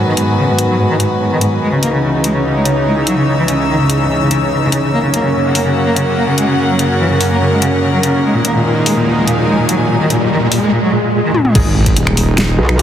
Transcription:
Already playing: supersaw synth G#2 D#3 F#3 B3, string section F#4 B4 G#5
0.07 cello D#3
0.17 cello G#2, closed hi-hat
0.28 cello G#2
0.38 cello C#3
0.48 cello G#2
0.59 cello G#2, closed hi-hat
0.69 cello F#3
0.79 cello G#2
0.90 cello D#3
1.00 cello G#2, closed hi-hat
1.10 cello G#2
1.21 cello G#2
1.31 cello D#3
1.41 cello G#2, closed hi-hat
1.52 cello G#2
1.62 supersaw synth C#2 C#3 E3 D#4, cello G#3, string section D#4
1.72 cello C#3
1.83 cello A#3, closed hi-hat
1.93 cello C#3
2.03 cello C#3
2.14 cello C#3
2.24 cello G#3, closed hi-hat
2.34 cello C#3, string section C#5
2.45 cello C#3
2.55 cello G#3
2.65 cello C#3, closed hi-hat
2.76 cello C#3
2.86 cello G#3
2.96 cello C#3
3.02 string section E6
3.07 cello F#3, closed hi-hat
3.17 cello C#3
3.27 cello C#3
3.38 cello E3
3.48 cello C#3, closed hi-hat
3.59 cello C#3
3.69 cello D#3
3.79 cello C#3
3.90 cello C#3, closed hi-hat
4.00 cello C#3
4.10 cello C#3
4.21 cello C#3
4.31 cello C#3, closed hi-hat
4.41 cello C#3
4.52 cello C#3
4.62 cello C#3
4.72 cello C#3, closed hi-hat
4.83 cello C#3
4.93 supersaw synth F#2 F#3 A#3 C#4, cello A#3, string section C#4, riser
5.03 cello C#3
5.14 cello A#3, closed hi-hat
5.24 cello C#3
5.34 cello C#3
5.45 cello C#3, string section F#5
5.55 cello A#3, open hi-hat
5.63 cello C#3, string section A#4
5.76 cello C#3
5.86 cello A#3
5.96 cello C#3, closed hi-hat
6.07 cello C#3
6.17 cello A#3
6.28 cello C#3
6.38 cello G#3, closed hi-hat
6.48 cello C#3
6.59 cello C#3
6.69 cello F#3
6.79 cello C#3, closed hi-hat
6.90 cello C#3
7.00 cello E3
7.10 cello C#3
7.21 cello C#3, open hi-hat
7.31 cello A#3
7.41 cello C#3
7.52 cello G#3
7.62 cello C#3, closed hi-hat
7.72 cello C#3
7.83 cello C#3
7.93 cello F#3
8.03 cello C#3, closed hi-hat
8.14 cello C#3
8.24 supersaw synth D#2 D#3 G#3 A#3, cello G#3, string section D#4
8.35 cello A#2
8.45 cello A#3, closed hi-hat
8.55 cello A#2
8.65 cello A#2
8.76 cello A#2
8.86 cello G#3, open hi-hat
8.97 cello A#2
9.07 cello A#2, string section G#5
9.17 cello G#3
9.28 cello A#2, closed hi-hat
9.38 cello A#2
9.48 cello G#3
9.59 cello A#2
9.69 cello F#3, closed hi-hat
9.79 cello A#2
9.90 cello A#2
10.00 cello D#3
10.10 cello A#2, closed hi-hat
10.21 cello A#2
10.31 cello D#3
10.41 cello A#2
10.52 cello A#2, open hi-hat
10.62 cello G#3
10.72 cello A#2, swell
10.83 cello F#3
10.93 cello A#2
11.03 cello A#2
11.14 cello A#2
11.24 cello D#3
11.34 cello A#2, high tom
11.45 cello A#2, mid tom
11.55 wobble bass G#1, supersaw synth D#3 G#3 D#4, synth stab G#3 D#4 G#4, kick, closed hi-hat, crash, impact
11.86 string section G#4, kick, closed hi-hat
11.97 wobble bass D#1, closed hi-hat
12.07 finger snap
12.17 open hi-hat
12.38 snare, closed hi-hat
12.59 wobble bass B1
12.69 finger snap

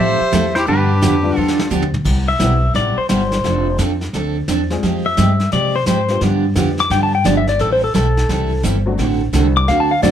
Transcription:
Already playing: steel-string acoustic guitar F3 A3 C4
0.00 upright bass A2, steel-string acoustic guitar E4 A4, electric slide guitar G4 E5, fiddle C5
0.21 muted upright bass stroke
0.32 upright bass E2, steel-string acoustic guitar F3 A3 C4 E4 A4, snare, hi-hat pedal
0.55 electric slide guitar E4 C5, fiddle G4, snare
0.67 upright bass G2, steel-string acoustic guitar D3 F3 B3 D4 G4, electric slide guitar D4 B4, fiddle G4, brush sweep
1.02 upright bass F2, steel-string acoustic guitar D3 F3 B3 D4 G4, snare, hi-hat pedal
1.23 honky-tonk piano D3 G3 B3 D4 F4
1.36 upright bass E2, steel-string acoustic guitar D3 F3 B3 D4 G4, fiddle F4, electric slide guitar A4
1.48 snare
1.59 snare
1.70 upright bass D2, steel-string acoustic guitar D3 F3 B3 D4 G4, floor tom, hi-hat pedal
1.82 floor tom
1.94 mid tom
2.05 upright bass C2, steel-string acoustic guitar C3 G3 B3 E4 G4, brush sweep, kick, snare, crash
2.28 pedal steel guitar E5
2.39 upright bass B1, steel-string acoustic guitar C3 G3 B3 E4 G4, honky-tonk piano E3 G3 B3 C4 E4, snare, hi-hat pedal
2.74 upright bass A1, steel-string acoustic guitar C3 G3 B3 E4 G4, pedal steel guitar D5, brush sweep, snare
2.97 pedal steel guitar C5, muted upright bass stroke
3.09 upright bass G1, steel-string acoustic guitar C3 G3 B3 E4 G4, pedal steel guitar C5, snare, hi-hat pedal
3.32 snare
3.44 upright bass F1, steel-string acoustic guitar F3 C4 D4 A4, honky-tonk piano F3 A3 C4 D4 F4, brush sweep, snare
3.78 upright bass F2, steel-string acoustic guitar F3 C4 D4 A4, snare, hi-hat pedal
4.01 snare
4.13 upright bass D2, steel-string acoustic guitar F3 C4 D4 A4, brush sweep, snare
4.48 upright bass E2, steel-string acoustic guitar F3 C4 D4 A4, snare, hi-hat pedal
4.70 honky-tonk piano G3 G#3 C4 F4 G#4, snare
4.83 upright bass F2, steel-string acoustic guitar F3 G#3 C4 G4, brush sweep, snare
5.06 pedal steel guitar E5
5.17 upright bass G2, steel-string acoustic guitar F3 G#3 C4 G4, snare, hi-hat pedal
5.40 snare
5.52 upright bass C3, steel-string acoustic guitar F3 G#3 C4 G4, pedal steel guitar D5, brush sweep, snare
5.76 pedal steel guitar C5
5.86 upright bass G#2, steel-string acoustic guitar F3 G#3 C4 G4, pedal steel guitar C5, snare, hi-hat pedal
6.08 honky-tonk piano G3 B3 D4 F4 G4, snare
6.21 upright bass G2, steel-string acoustic guitar D3 F3 B3 D4 G4, brush sweep, snare
6.55 upright bass F2, steel-string acoustic guitar D3 F3 B3 D4 G4, honky-tonk piano G3 B3 D4 F4 G4, snare, hi-hat pedal
6.78 pedal steel guitar D6, snare
6.90 upright bass G2, steel-string acoustic guitar D3 F3 B3 D4 G4, pedal steel guitar G5, brush sweep, snare
7.03 pedal steel guitar A5
7.15 pedal steel guitar G5
7.24 upright bass G1, steel-string acoustic guitar D3 F3 B3 D4 G4, pedal steel guitar D5, snare, hi-hat pedal
7.37 pedal steel guitar E5
7.47 pedal steel guitar D5, snare
7.59 upright bass A1, steel-string acoustic guitar E3 G3 C4 E4 A4, pedal steel guitar A4, brush sweep, snare
7.72 pedal steel guitar C5
7.84 pedal steel guitar A4
7.94 upright bass B1, steel-string acoustic guitar E3 G3 C4 E4 A4, pedal steel guitar A4, snare, hi-hat pedal
8.17 snare
8.29 upright bass C2, steel-string acoustic guitar E3 G3 C4 E4 A4, brush sweep, snare
8.63 upright bass G1, steel-string acoustic guitar E3 G3 C4 E4 A4, snare, hi-hat pedal
8.86 honky-tonk piano F#3 A3 C4 D4 F#4
8.98 upright bass A1, steel-string acoustic guitar D3 A3 C4 F#4 A4, brush sweep, snare
9.33 upright bass C2, steel-string acoustic guitar D3 A3 C4 F#4 A4, snare, hi-hat pedal
9.57 pedal steel guitar D6
9.68 upright bass D2, steel-string acoustic guitar D3 A3 C4 F#4 A4, pedal steel guitar F5, brush sweep, snare
9.80 pedal steel guitar A5
9.91 pedal steel guitar F5
10.02 upright bass F#2, steel-string acoustic guitar D3 A3 C4 F#4 A4, honky-tonk piano F#3 A3 C4 D4 F#4, pedal steel guitar D5, snare, hi-hat pedal

